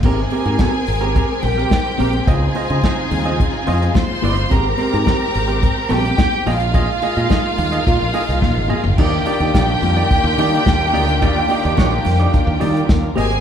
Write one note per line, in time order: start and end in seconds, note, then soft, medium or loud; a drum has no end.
0.03 0.24 G#1 loud
0.03 8.95 G#3 medium
0.03 0.18 C4 medium
0.03 4.48 C4 medium
0.03 0.19 G4 medium
0.03 1.41 G#4 medium
0.03 2.26 A#4 medium
0.03 0.19 A#4 medium
0.03 1.41 G#5 medium
0.03 kick loud
0.03 crash medium
0.03 muted conga soft
0.30 0.43 C4 medium
0.30 0.43 G4 medium
0.30 0.44 A#4 medium
0.30 open hi-hat medium
0.30 muted conga soft
0.46 0.56 G#2 medium
0.46 0.58 C4 medium
0.46 0.57 G4 medium
0.46 0.57 A#4 medium
0.46 closed hi-hat soft
0.59 0.80 C4 medium
0.59 0.74 G4 medium
0.59 0.73 A#4 medium
0.59 kick loud
0.59 snare medium
0.59 closed hi-hat medium
0.59 high conga medium
0.74 muted clean electric guitar stroke soft
0.87 1.18 G#1 medium
0.87 muted clean electric guitar stroke soft
0.87 open hi-hat medium
1.01 1.13 C4 medium
1.01 1.13 G4 medium
1.01 1.12 A#4 medium
1.01 closed hi-hat soft
1.14 1.30 C4 medium
1.14 1.29 G4 medium
1.14 1.27 A#4 loud
1.14 kick loud
1.14 closed hi-hat medium
1.14 muted conga soft
1.29 muted clean electric guitar stroke soft
1.43 1.64 A#1 loud
1.43 2.26 G4 medium
1.43 2.26 G5 medium
1.43 muted clean electric guitar stroke soft
1.43 open hi-hat medium
1.43 muted conga soft
1.43 low conga medium
1.57 1.69 C4 soft
1.57 1.69 G4 soft
1.57 1.69 A#4 medium
1.57 closed hi-hat soft
1.70 muted clean electric guitar stroke soft
1.70 kick loud
1.70 snare loud
1.70 closed hi-hat medium
1.70 high conga medium
1.86 muted clean electric guitar stroke medium
1.98 2.20 A#1 medium
1.98 2.14 C4 medium
1.98 2.13 G4 medium
1.98 2.12 A#4 medium
1.98 open hi-hat medium
1.98 high conga medium
2.13 muted clean electric guitar stroke soft
2.13 closed hi-hat soft
2.27 2.47 C#2 loud
2.27 4.49 C#3 medium
2.27 4.49 D#4 medium
2.27 4.49 F4 medium
2.27 2.42 F4 medium
2.27 3.92 G#4 medium
2.27 2.42 C5 medium
2.27 2.42 D#5 medium
2.27 3.92 G#5 medium
2.27 kick loud
2.27 closed hi-hat medium
2.27 muted conga medium
2.55 2.67 F4 medium
2.55 2.67 C5 medium
2.55 2.67 D#5 medium
2.55 open hi-hat medium
2.55 muted conga soft
2.70 2.80 C#3 medium
2.70 2.82 F4 soft
2.70 2.81 C5 medium
2.70 2.81 D#5 medium
2.70 closed hi-hat soft
2.83 2.98 F4 medium
2.83 2.97 C5 medium
2.83 2.96 D#5 medium
2.83 kick medium
2.83 snare loud
2.83 closed hi-hat medium
2.83 high conga medium
2.97 muted clean electric guitar stroke soft
3.11 3.41 D#2 medium
3.11 muted clean electric guitar stroke soft
3.11 open hi-hat medium
3.11 low conga medium
3.25 3.38 F4 soft
3.25 3.37 C5 medium
3.25 3.37 D#5 medium
3.25 closed hi-hat soft
3.39 muted clean electric guitar stroke soft
3.39 kick loud
3.39 closed hi-hat medium
3.54 muted clean electric guitar stroke soft
3.67 3.88 F2 medium
3.67 3.80 F4 medium
3.67 3.80 C5 medium
3.67 3.80 D#5 medium
3.67 open hi-hat medium
3.67 muted conga medium
3.81 3.93 F4 soft
3.81 3.93 C5 medium
3.81 3.92 D#5 medium
3.81 closed hi-hat soft
3.94 4.50 C5 medium
3.94 4.50 C6 medium
3.94 muted clean electric guitar stroke soft
3.94 kick loud
3.94 snare loud
3.94 closed hi-hat medium
3.94 high conga medium
4.09 muted clean electric guitar stroke medium
4.22 4.43 G1 loud
4.22 4.43 F4 medium
4.22 4.37 C5 medium
4.22 4.36 D#5 medium
4.22 open hi-hat medium
4.22 high conga medium
4.37 muted clean electric guitar stroke soft
4.37 closed hi-hat medium
4.50 4.72 G#1 loud
4.50 4.65 C4 medium
4.50 6.45 C4 medium
4.50 4.66 G4 medium
4.50 6.45 G4 medium
4.50 4.66 A#4 loud
4.50 5.89 A#4 medium
4.50 5.89 A#5 medium
4.50 kick loud
4.50 closed hi-hat medium
4.50 muted conga soft
4.78 4.90 C4 medium
4.78 4.90 G4 medium
4.78 4.90 A#4 medium
4.78 open hi-hat medium
4.78 muted conga soft
4.92 5.04 G#2 loud
4.92 5.04 C4 soft
4.92 5.05 G4 medium
4.92 5.04 A#4 medium
4.92 closed hi-hat soft
5.05 5.21 C4 medium
5.05 5.19 G4 medium
5.05 5.18 A#4 medium
5.05 kick medium
5.05 snare medium
5.05 closed hi-hat medium
5.05 high conga medium
5.20 muted clean electric guitar stroke soft
5.34 5.65 G#1 loud
5.34 muted clean electric guitar stroke soft
5.34 open hi-hat medium
5.48 5.60 C4 medium
5.48 5.60 G4 medium
5.48 5.60 A#4 medium
5.48 closed hi-hat soft
5.61 muted clean electric guitar stroke soft
5.61 kick loud
5.61 closed hi-hat medium
5.61 muted conga soft
5.76 muted clean electric guitar stroke soft
5.89 6.11 A#1 medium
5.89 6.04 C4 medium
5.89 6.03 G4 medium
5.89 6.47 G4 medium
5.89 6.02 A#4 loud
5.89 6.46 G5 medium
5.89 open hi-hat medium
5.89 muted conga medium
5.89 low conga medium
6.03 6.16 C4 soft
6.03 6.16 G4 medium
6.03 6.16 A#4 medium
6.03 closed hi-hat soft
6.17 muted clean electric guitar stroke soft
6.17 kick loud
6.17 snare loud
6.17 closed hi-hat medium
6.17 high conga medium
6.33 muted clean electric guitar stroke soft
6.46 6.87 A#1 loud
6.46 8.96 A#3 medium
6.46 8.96 D#4 medium
6.46 6.61 F4 medium
6.46 8.96 F4 medium
6.46 6.60 G#4 medium
6.46 6.59 D#5 medium
6.46 8.95 F5 medium
6.46 open hi-hat medium
6.46 high conga medium
6.60 muted clean electric guitar stroke medium
6.60 closed hi-hat soft
6.73 6.89 F4 medium
6.73 6.89 G#4 medium
6.73 6.89 D#5 loud
6.73 kick loud
6.73 closed hi-hat medium
6.73 muted conga soft
7.02 7.14 F4 medium
7.02 7.14 G#4 medium
7.02 7.15 D#5 medium
7.02 open hi-hat medium
7.02 muted conga medium
7.17 7.27 A#2 medium
7.17 7.29 F4 medium
7.17 7.29 G#4 medium
7.17 7.28 D#5 medium
7.17 closed hi-hat soft
7.30 7.45 F4 medium
7.30 7.44 G#4 medium
7.30 7.43 D#5 loud
7.30 kick loud
7.30 snare loud
7.30 closed hi-hat medium
7.30 high conga medium
7.45 muted clean electric guitar stroke soft
7.58 7.78 D#2 loud
7.58 muted clean electric guitar stroke soft
7.58 open hi-hat medium
7.58 low conga medium
7.72 7.84 F4 medium
7.72 7.84 G#4 medium
7.72 7.84 D#5 medium
7.72 closed hi-hat soft
7.86 7.97 A#2 loud
7.86 muted clean electric guitar stroke soft
7.86 kick loud
7.86 closed hi-hat medium
7.99 8.11 A#1 medium
7.99 muted clean electric guitar stroke soft
8.13 8.28 F4 loud
8.13 8.27 G#4 medium
8.13 8.26 D#5 loud
8.13 open hi-hat medium
8.13 muted conga medium
8.28 8.43 C2 medium
8.28 8.40 F4 soft
8.28 8.40 G#4 soft
8.28 8.39 D#5 medium
8.28 closed hi-hat soft
8.42 8.59 A#1 medium
8.42 muted clean electric guitar stroke soft
8.42 kick loud
8.42 snare medium
8.42 high conga medium
8.55 8.67 G#1 medium
8.55 muted clean electric guitar stroke medium
8.68 8.84 F4 medium
8.68 8.84 G#4 medium
8.68 8.83 D#5 medium
8.68 mid tom medium
8.68 high conga medium
8.84 8.94 G1 medium
8.84 muted clean electric guitar stroke soft
8.84 floor tom medium
8.98 9.18 D#2 loud
8.98 13.13 D#3 medium
8.98 13.13 A#3 medium
8.98 13.13 D4 medium
8.98 9.13 D#4 medium
8.98 13.13 F4 medium
8.98 12.85 G4 medium
8.98 9.13 G4 medium
8.98 13.40 A#4 medium
8.98 9.14 D5 medium
8.98 12.85 G5 loud
8.98 kick loud
8.98 crash loud
8.98 muted conga soft
9.26 9.37 D#4 medium
9.26 9.38 G4 medium
9.26 9.38 D5 medium
9.26 open hi-hat medium
9.26 muted conga medium
9.40 9.50 D#2 medium
9.40 9.52 D#4 medium
9.40 9.52 G4 medium
9.40 closed hi-hat soft
9.54 9.75 A#1 medium
9.54 9.68 D#4 medium
9.54 9.68 G4 medium
9.54 9.67 D5 medium
9.54 kick loud
9.54 snare loud
9.54 closed hi-hat medium
9.54 high conga medium
9.68 muted clean electric guitar stroke soft
9.82 10.02 F2 medium
9.82 muted clean electric guitar stroke soft
9.82 open hi-hat medium
9.82 low conga medium
9.96 10.08 D#4 medium
9.96 10.08 G4 medium
9.96 10.08 D5 medium
9.96 closed hi-hat soft
10.10 muted clean electric guitar stroke soft
10.10 kick loud
10.10 closed hi-hat medium
10.10 muted conga soft
10.24 10.34 D#2 loud
10.24 muted clean electric guitar stroke soft
10.38 10.58 D#3 medium
10.38 10.52 D#4 medium
10.38 10.52 G4 medium
10.38 10.51 D5 loud
10.38 open hi-hat medium
10.38 muted conga soft
10.38 low conga medium
10.52 10.64 D#4 medium
10.52 10.64 G4 medium
10.52 10.63 D5 medium
10.52 closed hi-hat medium
10.66 10.94 D#2 loud
10.66 kick loud
10.66 snare loud
10.66 closed hi-hat medium
10.66 high conga medium
10.81 muted clean electric guitar stroke medium
10.93 11.22 D2 medium
10.93 11.08 D#4 medium
10.93 11.08 G4 medium
10.93 11.07 D5 medium
10.93 open hi-hat medium
10.93 high conga medium
11.08 muted clean electric guitar stroke medium
11.08 closed hi-hat soft
11.22 11.42 D#2 loud
11.22 11.36 D#4 loud
11.22 11.36 G4 loud
11.22 11.36 D5 loud
11.22 kick loud
11.22 closed hi-hat medium
11.22 muted conga soft
11.49 11.61 D#4 medium
11.49 11.61 G4 medium
11.49 11.62 D5 medium
11.49 open hi-hat medium
11.49 muted conga medium
11.63 11.74 D#2 medium
11.63 11.75 D#4 medium
11.63 11.75 G4 medium
11.63 11.75 D5 medium
11.63 closed hi-hat soft
11.77 11.98 A#1 loud
11.77 11.97 D#4 medium
11.77 11.91 G4 medium
11.77 11.90 D5 loud
11.77 kick loud
11.77 snare medium
11.77 closed hi-hat medium
11.77 high conga medium
11.92 muted clean electric guitar stroke soft
12.05 12.26 F2 medium
12.05 muted clean electric guitar stroke soft
12.05 open hi-hat medium
12.05 low conga medium
12.19 12.31 D#4 medium
12.19 12.31 G4 medium
12.19 12.31 D5 medium
12.19 closed hi-hat soft
12.33 muted clean electric guitar stroke soft
12.33 kick loud
12.33 closed hi-hat medium
12.33 muted conga soft
12.46 12.57 D#2 loud
12.46 muted clean electric guitar stroke soft
12.60 12.81 D#3 loud
12.60 12.74 D#4 medium
12.60 12.74 G4 medium
12.60 12.73 D5 medium
12.60 open hi-hat medium
12.60 muted conga medium
12.60 low conga medium
12.74 12.86 D#4 soft
12.74 12.86 G4 medium
12.74 12.86 D5 medium
12.74 closed hi-hat medium
12.89 13.09 D#2 medium
12.89 muted clean electric guitar stroke soft
12.89 kick loud
12.89 snare loud
12.89 closed hi-hat medium
12.89 high conga medium
13.02 muted clean electric guitar stroke medium
13.16 13.40 G#1 medium
13.16 13.40 G#3 medium
13.16 13.40 C4 medium
13.16 13.31 G4 medium
13.16 13.40 G#4 medium
13.16 13.29 C5 medium
13.16 13.29 D#5 loud
13.16 13.40 G#5 loud
13.16 open hi-hat medium
13.16 high conga medium
13.30 muted clean electric guitar stroke soft
13.30 closed hi-hat soft